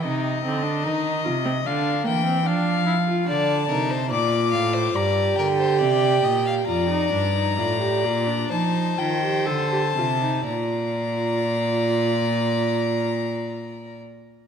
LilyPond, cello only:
\new Staff \with { instrumentName = "Cello" } { \clef bass \time 4/4 \key bes \major \tempo 4 = 68 c8 d8 ees8 c8 d8 e8 f4 | d8 c8 bes,8 a,8 g,8 d8 c8 bes,8 | f,8 g,8 a,8 bes,8 f8 ees8 d8 c8 | bes,1 | }